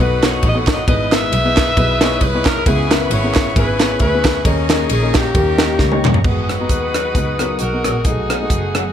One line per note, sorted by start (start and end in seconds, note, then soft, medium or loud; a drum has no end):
0.00 0.36 B1 loud
0.00 0.64 B2 medium
0.00 0.16 B3 medium
0.00 0.16 D#4 medium
0.00 0.84 D#4 medium
0.00 0.16 F#4 medium
0.00 0.84 F#4 medium
0.00 0.16 A4 medium
0.00 0.87 A4 medium
0.00 0.16 B4 medium
0.00 0.24 B4 loud
0.00 0.87 F#5 medium
0.00 4.42 B5 medium
0.00 2.63 D#6 medium
0.23 0.44 B3 medium
0.23 0.44 D#4 medium
0.23 0.44 F#4 medium
0.23 0.44 A4 medium
0.23 0.45 B4 medium
0.23 0.44 C#5 medium
0.23 snare loud
0.23 clap medium
0.23 ride medium
0.43 0.81 A1 loud
0.43 0.56 D#5 loud
0.43 kick medium
0.43 ride medium
0.55 0.78 B3 medium
0.55 0.78 D#4 medium
0.55 0.78 F#4 medium
0.55 0.78 A4 medium
0.55 0.78 C#5 medium
0.67 kick loud
0.67 snare loud
0.67 clap loud
0.67 ride medium
0.71 0.87 D#5 loud
0.87 1.25 G#1 medium
0.87 1.53 G#2 medium
0.87 1.05 B3 medium
0.87 1.05 D#4 medium
0.87 1.05 E4 medium
0.87 2.65 G#4 medium
0.87 1.05 G#4 medium
0.87 1.12 B4 medium
0.87 1.05 B4 medium
0.87 1.11 D#5 loud
0.87 4.42 E5 medium
0.87 kick loud
0.87 ride medium
1.12 1.33 B3 medium
1.12 1.33 D#4 medium
1.12 1.33 E4 medium
1.12 1.33 G#4 medium
1.12 2.18 B4 medium
1.12 1.34 B4 medium
1.12 2.22 E5 loud
1.12 snare loud
1.12 clap medium
1.12 ride medium
1.32 1.70 B1 loud
1.32 ride medium
1.44 1.68 B3 medium
1.44 1.68 D#4 medium
1.44 1.68 E4 medium
1.44 1.68 G#4 medium
1.44 1.68 B4 medium
1.56 kick medium
1.56 snare loud
1.56 clap loud
1.56 ride medium
1.77 2.15 B1 loud
1.77 1.94 B3 medium
1.77 1.94 D#4 medium
1.77 1.94 E4 medium
1.77 1.95 G#4 medium
1.77 1.95 B4 loud
1.77 kick loud
1.77 ride medium
2.01 2.23 B3 medium
2.01 2.23 D#4 medium
2.01 2.23 E4 medium
2.01 2.23 G#4 medium
2.01 2.24 C#5 loud
2.01 snare loud
2.01 clap medium
2.01 ride medium
2.21 2.59 C2 loud
2.21 2.46 B4 loud
2.21 kick medium
2.21 ride medium
2.34 2.57 B3 medium
2.34 2.57 D#4 medium
2.34 2.57 E4 medium
2.34 2.57 G#4 medium
2.34 2.58 C#5 medium
2.45 2.67 A#4 loud
2.45 kick loud
2.45 snare loud
2.45 clap loud
2.45 ride medium
2.66 3.04 C#2 loud
2.66 3.32 C#3 medium
2.66 2.83 B3 medium
2.66 3.52 B3 medium
2.66 2.83 C#4 medium
2.66 2.83 E4 medium
2.66 3.10 E4 medium
2.66 2.83 G#4 medium
2.66 2.91 G#4 loud
2.66 5.33 G#4 medium
2.66 2.84 B4 medium
2.66 6.22 C#6 medium
2.66 kick loud
2.66 ride medium
2.90 3.12 B3 medium
2.90 3.12 C#4 medium
2.90 3.12 E4 medium
2.90 3.12 G#4 medium
2.90 3.12 A#4 medium
2.90 3.10 B4 medium
2.90 snare loud
2.90 clap medium
2.90 ride medium
3.10 3.49 G#1 loud
3.10 3.55 E4 medium
3.10 3.55 G#4 medium
3.10 3.56 C#5 loud
3.10 ride medium
3.23 3.46 B3 medium
3.23 3.46 C#4 medium
3.23 3.47 E4 medium
3.23 3.47 G#4 medium
3.23 3.47 A#4 medium
3.34 kick loud
3.34 snare loud
3.34 clap loud
3.34 ride medium
3.55 3.94 G#1 loud
3.55 3.73 B3 medium
3.55 3.73 C#4 medium
3.55 3.73 E4 medium
3.55 3.99 E4 medium
3.55 3.73 G#4 medium
3.55 3.99 G#4 medium
3.55 3.73 B4 medium
3.55 3.97 B4 loud
3.55 kick loud
3.55 ride medium
3.80 4.01 B3 medium
3.80 4.02 C#4 medium
3.80 4.01 E4 medium
3.80 4.02 G#4 medium
3.80 4.02 C#5 medium
3.80 snare loud
3.80 clap medium
3.80 ride medium
3.99 4.38 D2 medium
3.99 4.42 E4 medium
3.99 4.42 G#4 medium
3.99 4.42 B4 loud
3.99 kick medium
3.99 ride medium
4.14 4.37 B3 medium
4.14 4.37 C#4 medium
4.14 4.37 E4 medium
4.14 4.37 G#4 medium
4.14 4.37 B4 medium
4.24 kick medium
4.24 snare loud
4.24 clap loud
4.24 ride medium
4.45 4.83 D#2 loud
4.45 5.11 D#3 medium
4.45 4.62 A#3 medium
4.45 5.15 C#4 medium
4.45 4.63 C#4 medium
4.45 4.63 D#4 medium
4.45 4.90 G#4 medium
4.45 4.62 G#4 medium
4.45 4.63 A#4 medium
4.45 6.23 D#5 medium
4.45 6.23 A#5 medium
4.45 kick loud
4.45 ride medium
4.70 4.91 A#3 medium
4.70 4.91 C#4 medium
4.70 4.91 D#4 medium
4.70 4.91 G#4 medium
4.70 4.91 A#4 medium
4.70 snare loud
4.70 clap medium
4.70 ride medium
4.89 5.28 A#1 loud
4.89 5.14 G#4 medium
4.89 ride medium
5.02 5.26 A#3 medium
5.02 5.26 C#4 medium
5.02 5.26 D#4 medium
5.02 5.26 G#4 medium
5.02 5.26 A#4 medium
5.14 6.02 A#3 medium
5.14 6.01 C#4 medium
5.14 6.06 G4 medium
5.14 kick loud
5.14 snare loud
5.14 clap loud
5.14 ride medium
5.34 5.73 D#2 loud
5.34 6.01 D#3 medium
5.34 5.52 A#3 medium
5.34 5.52 C#4 medium
5.34 5.52 D#4 medium
5.34 5.52 G4 medium
5.34 6.24 G4 medium
5.34 5.52 A#4 medium
5.34 kick loud
5.34 ride medium
5.58 5.80 A#3 medium
5.58 5.80 C#4 medium
5.58 5.80 D#4 medium
5.58 5.80 G4 medium
5.58 5.81 A#4 medium
5.58 snare loud
5.58 clap medium
5.58 ride medium
5.79 6.01 C#2 medium
5.79 kick medium
5.79 snare medium
5.91 6.15 A#3 medium
5.91 6.15 C#4 medium
5.91 6.15 D#4 medium
5.91 6.15 G4 medium
5.91 6.15 C#5 loud
5.91 high tom medium
6.04 6.21 E2 medium
6.04 clap loud
6.04 mid tom loud
6.14 floor tom loud
6.24 6.63 G#1 medium
6.24 6.91 G#2 medium
6.24 8.03 F#3 medium
6.24 8.03 G#3 medium
6.24 8.93 B3 medium
6.24 6.50 B3 medium
6.24 6.51 D#4 medium
6.24 7.56 D#4 medium
6.24 6.50 F#4 medium
6.24 8.93 F#4 medium
6.24 7.56 F#4 medium
6.24 6.51 G#4 medium
6.24 8.03 G#4 medium
6.24 7.56 B4 loud
6.24 8.93 F#5 soft
6.24 8.93 D#6 medium
6.24 kick loud
6.24 crash medium
6.49 cross-stick medium
6.49 closed hi-hat medium
6.60 7.00 B3 medium
6.60 7.00 D#4 medium
6.60 7.00 F#4 medium
6.60 7.00 A#5 medium
6.69 7.08 D#2 medium
6.69 kick medium
6.69 closed hi-hat medium
6.94 cross-stick medium
6.94 closed hi-hat medium
7.15 7.53 C#2 medium
7.15 7.32 B3 medium
7.15 7.32 D#4 medium
7.15 7.33 F#4 medium
7.15 7.33 B4 medium
7.15 kick medium
7.15 closed hi-hat medium
7.39 7.61 B3 medium
7.39 7.61 D#4 medium
7.39 7.61 F#4 medium
7.39 7.61 A#4 medium
7.39 cross-stick medium
7.39 closed hi-hat medium
7.59 7.81 B1 medium
7.59 8.02 D#4 medium
7.59 8.01 F#4 medium
7.59 8.02 A#4 medium
7.59 closed hi-hat medium
7.73 7.96 B3 medium
7.73 7.96 D#4 medium
7.73 7.96 F#4 medium
7.73 7.96 A#4 medium
7.84 8.02 A#1 medium
7.84 cross-stick medium
7.84 closed hi-hat medium
8.04 8.43 B1 medium
8.04 8.72 B2 medium
8.04 8.93 F#3 medium
8.04 8.93 A3 medium
8.04 8.31 B3 medium
8.04 8.91 D#4 medium
8.04 8.32 D#4 medium
8.04 8.32 F#4 medium
8.04 8.93 G#4 medium
8.04 8.32 A4 medium
8.04 kick loud
8.04 closed hi-hat medium
8.30 cross-stick medium
8.30 closed hi-hat medium
8.41 8.81 A3 medium
8.41 8.80 B3 medium
8.41 8.80 D#4 medium
8.41 8.81 F#4 medium
8.50 8.88 F#1 medium
8.50 kick medium
8.50 closed hi-hat medium
8.75 cross-stick loud
8.75 closed hi-hat medium